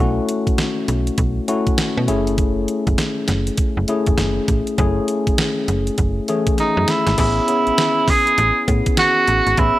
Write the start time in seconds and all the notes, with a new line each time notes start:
0.00 B1 A3 C#4 E4 F#4
0.29 closed hi-hat
0.47 B1, kick, closed hi-hat
0.58 snare, closed hi-hat
0.88 B1, closed hi-hat
1.07 closed hi-hat
1.18 B1, kick, closed hi-hat
1.48 A3 C#4 E4 F#4, closed hi-hat
1.67 kick, closed hi-hat
1.78 snare, closed hi-hat
1.97 B2
2.08 F#1 A3 C#4 E4 G#4, closed hi-hat
2.27 closed hi-hat
2.38 kick, closed hi-hat
2.68 closed hi-hat
2.87 F#1, kick, closed hi-hat
2.98 snare, closed hi-hat
3.28 F#1, snare, closed hi-hat
3.47 closed hi-hat
3.58 kick, closed hi-hat
3.77 F#1
3.88 A3 C#4 E4 G#4, closed hi-hat
4.06 E1, kick, closed hi-hat
4.18 F#1, snare, closed hi-hat
4.48 A1, kick, closed hi-hat
4.67 closed hi-hat
4.78 F#1 A3 C#4 E4 G#4, kick, closed hi-hat
5.08 closed hi-hat
5.27 F#1, kick, closed hi-hat
5.38 snare, closed hi-hat
5.68 F#1, closed hi-hat
5.87 closed hi-hat
5.98 F#1, kick, closed hi-hat
6.28 E3 A3 C#4 G#4, closed hi-hat
6.47 kick, closed hi-hat
6.58 D#4, snare, closed hi-hat
6.77 F#2
6.88 E4, snare, closed hi-hat
7.07 G#1, snare, closed hi-hat
7.17 A1 B3 C#4 E4 G#4, kick, closed hi-hat, crash
7.47 B3 C#4 E4 G#4, closed hi-hat
7.67 A1, closed hi-hat
7.78 snare, closed hi-hat
8.08 G#4, kick, snare, open hi-hat
8.27 closed hi-hat
8.38 A1, closed hi-hat
8.67 A2 B3 C#4 E4 G#4, kick, closed hi-hat
8.86 kick, closed hi-hat
8.97 F#4, snare, closed hi-hat
9.27 A1, closed hi-hat
9.47 G#1, closed hi-hat
9.57 A1 B3 C#4 E4 G#4, kick, closed hi-hat